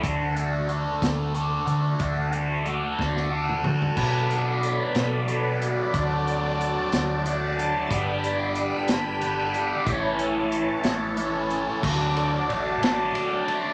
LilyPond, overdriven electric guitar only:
\new Staff \with { instrumentName = "Overdriven electric guitar" } { \time 6/8 \key d \major \tempo 4. = 61 <d a d' fis'>8 <d a d' fis'>8 <d a d' fis'>4 <d a d' fis'>8 <a d' fis'>8 | <d a d' fis'>8 <d a d' fis'>8 <d a d' fis'>4 <d a d' fis'>8 <a d' fis'>8 | <b, fis b d'>2 <b, fis b d'>4 | <d fis a d'>2 <d fis a d'>4 |
<g, d g b d'>2 <g, d g b d'>4 | <a, e a cis' e'>2 <a, e a cis' e'>4 | <d fis a d'>8 <fis a d'>8 <d fis a d'>8 <d fis a d'>4 <fis a d'>8 | }